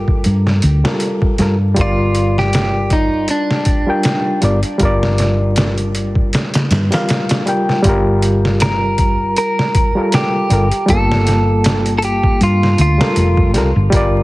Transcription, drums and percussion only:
0.08 kick
0.24 closed hi-hat
0.47 snare
0.62 closed hi-hat
0.85 snare
1.00 closed hi-hat
1.22 kick
1.38 snare, closed hi-hat
1.76 kick, closed hi-hat
2.15 closed hi-hat
2.38 snare
2.53 snare, closed hi-hat
2.90 kick, closed hi-hat
3.28 closed hi-hat
3.51 snare
3.65 kick, closed hi-hat
4.03 snare, closed hi-hat
4.42 closed hi-hat
4.63 closed hi-hat
4.79 kick, closed hi-hat
5.03 snare
5.18 snare, closed hi-hat
5.56 snare, closed hi-hat
5.78 closed hi-hat
5.95 closed hi-hat
6.15 kick
6.33 snare, closed hi-hat
6.54 snare, closed hi-hat
6.71 snare, closed hi-hat
6.92 snare, closed hi-hat
7.09 snare, closed hi-hat
7.29 snare, closed hi-hat
7.47 closed hi-hat
7.69 snare
7.84 kick, closed hi-hat
8.22 closed hi-hat
8.45 snare
8.60 snare, closed hi-hat
8.98 kick, closed hi-hat
9.37 closed hi-hat
9.59 snare
9.75 kick, closed hi-hat
10.12 snare, closed hi-hat
10.50 closed hi-hat
10.71 closed hi-hat
10.88 kick, closed hi-hat
11.12 snare
11.27 snare, closed hi-hat
11.64 snare, closed hi-hat
11.86 closed hi-hat
12.02 closed hi-hat
12.23 kick
12.41 closed hi-hat
12.63 snare
12.78 closed hi-hat
13.01 snare
13.16 closed hi-hat
13.37 kick
13.54 snare, closed hi-hat
13.92 kick, closed hi-hat

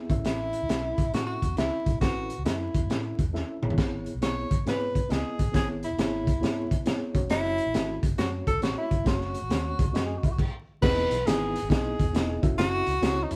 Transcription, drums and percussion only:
0.10 kick, closed hi-hat
0.25 snare, closed hi-hat
0.53 closed hi-hat
0.69 snare, closed hi-hat
0.98 kick, closed hi-hat
1.14 snare, closed hi-hat
1.42 kick, closed hi-hat
1.57 snare, closed hi-hat
1.86 kick, closed hi-hat
2.01 kick, snare, closed hi-hat
2.30 closed hi-hat
2.46 snare, closed hi-hat
2.74 kick, closed hi-hat
2.90 snare, closed hi-hat
3.19 kick, closed hi-hat
3.35 snare
3.63 mid tom
3.70 floor tom
3.78 kick, snare, splash
4.06 closed hi-hat
4.22 snare, closed hi-hat
4.51 kick, closed hi-hat
4.67 snare, closed hi-hat
4.95 kick, closed hi-hat
5.10 snare, closed hi-hat
5.39 kick, closed hi-hat
5.54 kick, snare, closed hi-hat
5.83 closed hi-hat
5.99 snare, closed hi-hat
6.27 kick, closed hi-hat
6.43 snare, closed hi-hat
6.71 kick, closed hi-hat
6.86 snare, closed hi-hat
7.15 kick, closed hi-hat
7.30 snare, closed hi-hat
7.45 snare
7.58 closed hi-hat
7.74 snare, closed hi-hat
8.03 kick, closed hi-hat
8.18 snare, closed hi-hat
8.47 kick, closed hi-hat
8.62 snare, closed hi-hat
8.91 kick, closed hi-hat
9.06 kick, snare, closed hi-hat
9.21 snare
9.35 closed hi-hat
9.50 snare, closed hi-hat
9.79 kick, closed hi-hat
9.95 snare, closed hi-hat
10.23 kick, closed hi-hat
10.38 kick, crash
10.83 kick, snare, crash
10.98 snare
11.11 closed hi-hat
11.27 snare, closed hi-hat
11.56 closed hi-hat
11.70 kick, snare, closed hi-hat
11.99 kick, closed hi-hat
12.15 snare, closed hi-hat
12.43 kick, closed hi-hat
12.58 snare, closed hi-hat
12.87 closed hi-hat
13.02 snare, closed hi-hat
13.31 closed hi-hat

